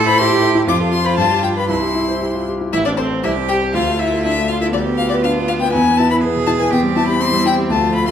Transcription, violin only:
0, 0, Header, 1, 2, 480
1, 0, Start_track
1, 0, Tempo, 508044
1, 638, Time_signature, 2, 2, 24, 8
1, 3535, Tempo, 494234
1, 7779, End_track
2, 0, Start_track
2, 0, Title_t, "Violin"
2, 0, Program_c, 0, 40
2, 58, Note_on_c, 0, 83, 123
2, 168, Note_on_c, 0, 84, 127
2, 182, Note_off_c, 0, 83, 0
2, 401, Note_off_c, 0, 84, 0
2, 647, Note_on_c, 0, 86, 110
2, 723, Note_off_c, 0, 86, 0
2, 872, Note_on_c, 0, 84, 110
2, 998, Note_on_c, 0, 83, 109
2, 1012, Note_off_c, 0, 84, 0
2, 1108, Note_off_c, 0, 83, 0
2, 1114, Note_on_c, 0, 81, 120
2, 1352, Note_off_c, 0, 81, 0
2, 1356, Note_on_c, 0, 79, 95
2, 1405, Note_off_c, 0, 79, 0
2, 1481, Note_on_c, 0, 83, 105
2, 1598, Note_off_c, 0, 83, 0
2, 1604, Note_on_c, 0, 84, 97
2, 2326, Note_off_c, 0, 84, 0
2, 2579, Note_on_c, 0, 76, 99
2, 2627, Note_off_c, 0, 76, 0
2, 2694, Note_on_c, 0, 74, 97
2, 2743, Note_off_c, 0, 74, 0
2, 2808, Note_on_c, 0, 72, 93
2, 2884, Note_off_c, 0, 72, 0
2, 3057, Note_on_c, 0, 76, 95
2, 3132, Note_off_c, 0, 76, 0
2, 3294, Note_on_c, 0, 79, 101
2, 3369, Note_off_c, 0, 79, 0
2, 3531, Note_on_c, 0, 77, 99
2, 3776, Note_on_c, 0, 76, 98
2, 3790, Note_off_c, 0, 77, 0
2, 4012, Note_off_c, 0, 76, 0
2, 4018, Note_on_c, 0, 76, 109
2, 4256, Note_on_c, 0, 77, 95
2, 4271, Note_off_c, 0, 76, 0
2, 4375, Note_off_c, 0, 77, 0
2, 4380, Note_on_c, 0, 76, 100
2, 4428, Note_off_c, 0, 76, 0
2, 4497, Note_on_c, 0, 74, 94
2, 4574, Note_off_c, 0, 74, 0
2, 4731, Note_on_c, 0, 77, 106
2, 4848, Note_off_c, 0, 77, 0
2, 4853, Note_on_c, 0, 74, 101
2, 4903, Note_off_c, 0, 74, 0
2, 4988, Note_on_c, 0, 77, 109
2, 5066, Note_off_c, 0, 77, 0
2, 5223, Note_on_c, 0, 77, 108
2, 5272, Note_off_c, 0, 77, 0
2, 5346, Note_on_c, 0, 79, 106
2, 5461, Note_off_c, 0, 79, 0
2, 5467, Note_on_c, 0, 80, 107
2, 5703, Note_on_c, 0, 81, 115
2, 5718, Note_off_c, 0, 80, 0
2, 5824, Note_off_c, 0, 81, 0
2, 5832, Note_on_c, 0, 83, 100
2, 5878, Note_off_c, 0, 83, 0
2, 6180, Note_on_c, 0, 81, 107
2, 6228, Note_off_c, 0, 81, 0
2, 6306, Note_on_c, 0, 80, 86
2, 6420, Note_off_c, 0, 80, 0
2, 6427, Note_on_c, 0, 79, 103
2, 6505, Note_off_c, 0, 79, 0
2, 6664, Note_on_c, 0, 81, 106
2, 6772, Note_off_c, 0, 81, 0
2, 6778, Note_on_c, 0, 83, 110
2, 6900, Note_on_c, 0, 84, 122
2, 6914, Note_off_c, 0, 83, 0
2, 7138, Note_off_c, 0, 84, 0
2, 7153, Note_on_c, 0, 79, 109
2, 7230, Note_off_c, 0, 79, 0
2, 7382, Note_on_c, 0, 81, 102
2, 7614, Note_off_c, 0, 81, 0
2, 7622, Note_on_c, 0, 83, 104
2, 7731, Note_off_c, 0, 83, 0
2, 7737, Note_on_c, 0, 84, 102
2, 7779, Note_off_c, 0, 84, 0
2, 7779, End_track
0, 0, End_of_file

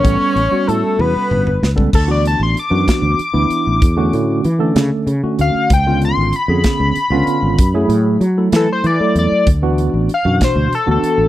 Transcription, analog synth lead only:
0, 0, Header, 1, 2, 480
1, 0, Start_track
1, 0, Tempo, 628272
1, 34, Time_signature, 6, 3, 24, 8
1, 8620, End_track
2, 0, Start_track
2, 0, Title_t, "Analog synth lead"
2, 0, Program_c, 0, 81
2, 0, Note_on_c, 0, 73, 102
2, 515, Note_on_c, 0, 69, 83
2, 526, Note_off_c, 0, 73, 0
2, 766, Note_on_c, 0, 71, 81
2, 778, Note_off_c, 0, 69, 0
2, 1302, Note_off_c, 0, 71, 0
2, 1487, Note_on_c, 0, 69, 81
2, 1594, Note_off_c, 0, 69, 0
2, 1614, Note_on_c, 0, 74, 74
2, 1718, Note_off_c, 0, 74, 0
2, 1737, Note_on_c, 0, 81, 68
2, 1840, Note_off_c, 0, 81, 0
2, 1856, Note_on_c, 0, 84, 68
2, 1959, Note_off_c, 0, 84, 0
2, 1982, Note_on_c, 0, 86, 74
2, 2203, Note_off_c, 0, 86, 0
2, 2215, Note_on_c, 0, 86, 90
2, 3617, Note_off_c, 0, 86, 0
2, 4134, Note_on_c, 0, 77, 86
2, 4359, Note_off_c, 0, 77, 0
2, 4381, Note_on_c, 0, 79, 88
2, 4603, Note_off_c, 0, 79, 0
2, 4621, Note_on_c, 0, 84, 80
2, 4843, Note_off_c, 0, 84, 0
2, 4859, Note_on_c, 0, 83, 89
2, 6257, Note_off_c, 0, 83, 0
2, 6541, Note_on_c, 0, 69, 76
2, 6641, Note_off_c, 0, 69, 0
2, 6666, Note_on_c, 0, 72, 90
2, 6764, Note_off_c, 0, 72, 0
2, 6773, Note_on_c, 0, 74, 81
2, 6997, Note_off_c, 0, 74, 0
2, 7019, Note_on_c, 0, 74, 90
2, 7240, Note_off_c, 0, 74, 0
2, 7747, Note_on_c, 0, 77, 82
2, 7964, Note_off_c, 0, 77, 0
2, 7977, Note_on_c, 0, 72, 82
2, 8198, Note_off_c, 0, 72, 0
2, 8212, Note_on_c, 0, 69, 82
2, 8315, Note_off_c, 0, 69, 0
2, 8336, Note_on_c, 0, 69, 92
2, 8620, Note_off_c, 0, 69, 0
2, 8620, End_track
0, 0, End_of_file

